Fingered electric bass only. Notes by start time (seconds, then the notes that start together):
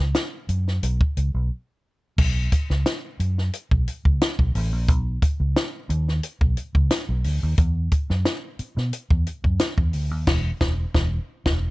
0.00 C#2
0.49 F#2
0.83 B1
1.17 C#2
1.34 B1
2.18 B1
2.70 C#2
3.20 F#2
3.71 B1
4.05 C#2
4.39 B1
4.55 A1
4.72 A#1
4.88 B1
5.40 C#2
5.90 D#2
6.41 B1
6.75 C#2
7.09 B1
7.25 D2
7.43 D#2
7.58 E2
8.10 F#2
8.59 muted fingered electric bass stroke
8.77 B2
9.11 E2
9.44 F#2
9.78 E2
9.93 D2
10.11 D#2
10.27 E1
10.61 E1
10.95 E1
11.46 E1